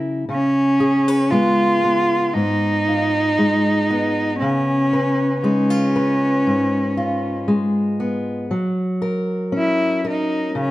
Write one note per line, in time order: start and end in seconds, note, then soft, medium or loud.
0.00 0.27 C#3 soft
0.00 0.29 F#3 medium
0.00 0.23 C#4 medium
0.00 0.24 E4 medium
0.29 2.35 C#3 medium
0.29 1.33 C#4 loud
0.80 1.08 G#4 medium
1.08 4.42 B4 soft
1.31 3.37 G#3 medium
1.31 1.84 B3 medium
1.31 2.35 F4 loud
1.84 3.89 B3 medium
2.34 4.41 G#2 medium
2.34 4.39 D#4 medium
2.88 4.35 F4 soft
3.39 4.35 G#3 medium
3.90 7.99 B3 medium
4.40 6.47 C#3 medium
4.40 5.39 C#4 medium
4.93 5.95 B4 medium
5.41 7.47 G#3 medium
5.41 7.44 C#4 medium
5.41 5.70 D#4 medium
5.70 6.96 F4 soft
5.96 8.46 B4 medium
6.46 8.52 G#2 medium
6.97 8.45 F4 medium
7.48 8.45 G#3 medium
8.00 8.51 B3 medium
8.51 10.71 F#3 medium
9.02 10.03 A#4 medium
9.52 10.71 C#4 medium
9.58 10.04 E4 medium
10.05 10.71 A#4 medium
10.10 10.56 D#4 medium
10.55 10.71 C#3 medium
10.60 10.71 C#4 medium